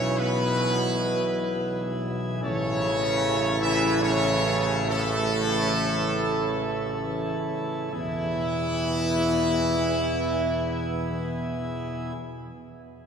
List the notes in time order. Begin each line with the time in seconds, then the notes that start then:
Already playing: B1 B2 C#3 E3 C#4 E4 G#4 C#5
0.18 B2 B3 B4
2.43 A1 C#3 E3 C#4 E4 A4 C#5
3.61 E3 E4 E5
4.02 C#3 C#4 C#5
4.87 A2 A3 A4
7.92 E2 B2 E3 E4 G#4